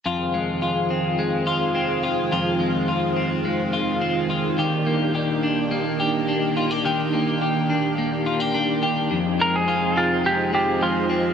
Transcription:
<<
  \new Staff \with { instrumentName = "Electric slide guitar" } { \time 4/4 \key f \dorian \tempo 4 = 106 r1 | r1 | r1 | r1 |
r8 bes'16 aes'8. f'8 g'8 g'8 f'4 | }
  \new Staff \with { instrumentName = "String machine" } { \time 4/4 \key f \dorian << { <c' f' aes'>1~ | <c' f' aes'>1 | <bes d' g'>1~ | <bes d' g'>1 |
<c' ees' aes'>1 | } \\ { ees1~ | ees1~ | ees1~ | ees1 |
f1 | } >> }
  \new Staff \with { instrumentName = "Clean electric guitar" } { \time 4/4 \key f \dorian <f, f'>8 aes8 f'8 c'8 aes8 f'8 c'8 f'8 | <f, f'>8 aes8 f'8 c'8 aes8 f'8 c'8 f'8 | <ees g'>8 bes8 g'8 d'8 bes8 g'8 d'8 f'16 g'16 | <ees g'>8 bes8 g'8 d'8 bes8 f'16 g'16 d'8 g'8 |
f,8 aes8 f'8 c'8 aes8 c'8 aes8 c'8 | }
>>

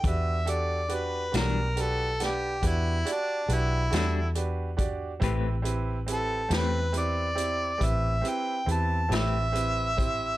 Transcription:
<<
  \new Staff \with { instrumentName = "Harmonica" } { \time 12/8 \key e \minor \tempo 4. = 46 e''8 d''8 b'8 ais'8 a'8 g'8 e'8 d'8 e'4 r4 | r4 a'8 b'8 d''4 e''8 g''8 a''8 e''4. | }
  \new Staff \with { instrumentName = "Grand piano" } { \time 12/8 \key e \minor <d' fis' g' b'>8 <d' fis' g' a'>8 <d' fis' g' b'>8 <b d' fis' g'>8 <d' fis' g' b'>8 <d' g' b' fis''>8 <d' fis' g' b'>8 <d' fis' g' d''>8 <d' fis' g' b'>8 <d' fis' g' a'>8 <d' fis' g' b'>8 <d' fis' g' d''>8 | <c' e' g' b'>8 <c' e' g' b'>8 <c' e' g' b'>8 <c' e' g' b'>8 <c' e' g' b'>8 <c' e' g' d''>8 <c' e' g' b'>8 <c' e' g' b'>8 <c' e' g' b'>8 <c' e' g' b'>8 <c' e' g' b'>8 <c' e' g' c''>8 | }
  \new Staff \with { instrumentName = "Clean electric guitar" } { \time 12/8 \key e \minor r4. <e g d' fis'>8 r2 r8 <e g d' fis'>8 r4 | <a c' g' b'>8 r4 <a c' g' b'>8 r2 r8 <a c' g' b'>8 r4 | }
  \new Staff \with { instrumentName = "Fingered electric bass" } { \clef bass \time 12/8 \key e \minor e,4. b,,4. e,8 r8 b,,8 e,4. | a,,4. e,4. a,,8 r8 e,8 a,,4. | }
  \new DrumStaff \with { instrumentName = "Drums" } \drummode { \time 12/8 <hh bd>8 hh8 hh8 <hh sn>8 hh8 <hh sn>8 <hh bd>8 hh8 hh8 <hh sn>8 hh8 <hh bd>8 | <hh bd>8 hh8 hh8 <hh sn>8 hh8 hh8 <hh bd>8 hh8 hh8 <hh sn>8 hh8 <hh bd>8 | }
>>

